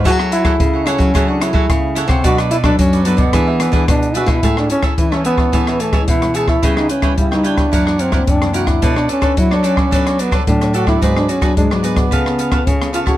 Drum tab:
HH |x-xxx-xxx-x-x-xx|xxxxxxxxx-xxxxxx|x-xxx-x-xxxxxxx-|x-xxx-xxx-xxxxxx|
SD |-r-r--r-r-r-r--r|-r-r----r-r-r--r|-r-r-r-r-r-r-r-r|-r-r-r-r-r-r-r-r|
BD |o--oo--oo--oo--o|o--oo--oo--oo--o|o--oo--oo--oo--o|o--oo--oo--oo--o|

HH |x-xxx-x-xxxxxxx-|x-xxx-xxx-xxxxxx|
SD |-r-r-r-r-r-r-r-r|-r-r-r-r-r-r-r-r|
BD |o--oo--oo--oo--o|o--oo--oo--oo--o|